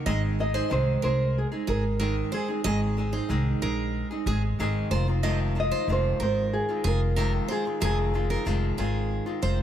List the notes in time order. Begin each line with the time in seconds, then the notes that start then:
0.06 G#1 G#2 D#3 G#3 C4 D#4 G#4 D#5
0.39 G#3 C4 D#4 G#4 D#5
0.54 G#3 C4 D#4 G#4 C5
0.70 C2 G#2 D#3 G#3 C4 D#4 G#4 C5
1.02 C2 G#3 C4 D#4 G#4 A#4 C5
1.38 G#4
1.52 G#3 C4 D#4 G#4
1.67 G#1 G#3 C4 D#4 G#4 A#4
1.99 G#2 D#3 G#3 C4 D#4 G#4 A#4
2.32 G#3 C4 D#4 G#4 C5
2.48 G#3 C4 D#4 G#4
2.64 G#1 G#2 D#3 G#3 C4 D#4 G#4 D#5
2.97 G#3 C4 D#4 G#4
3.12 G#3 C4 D#4 G#4 C5
3.29 C2 G#2 D#3 G#3 C4 D#4 G#4
3.62 A#1 G#3 C4 D#4 G#4 A#4
4.11 G#3 C4 D#4 G#4
4.26 G#1 G#3 C4 D#4 G#4
4.59 G#1 G#2 D#3 G#3 C4 D#4 G#4
4.91 F1 D#3 G#3 C4 F4 C5
5.08 D#3 G#3 C4 F4
5.23 F2 C3 D#3 G#3 C4 F4 D#5
5.55 D#3 G#3 C4 F4
5.60 D#5
5.71 D#3 G#3 C4 F4 C5
5.88 F1 F2 C3 D#3 G#3 C4 F4
5.92 C5
6.20 G#1 D#3 G#3 C4 F4 A#4 C5
6.53 G#4
6.69 D#3 G#3 C4 F4
6.84 F1 D#3 G#3 C4 F4 G#4 A#4
7.16 F2 C3 D#3 G#3 C4 F4 A#4
7.48 D#3 G#3 C4 F4 G#4 C5
7.65 D#3 G#3 C4 F4
7.80 F1 F2 C3 D#3 G#3 C4 F4 G#4
7.85 G#4
8.14 D#3 G#3 C4 F4
8.30 D#3 G#3 C4 F4 A#4
8.45 F1 F2 C3 D#3 G#3 C4 F4
8.77 G#1 D#3 G#3 C4 F4 G#4
9.26 D#3 G#3 C4 F4
9.42 F1 D#3 G#3 C4 F4 C5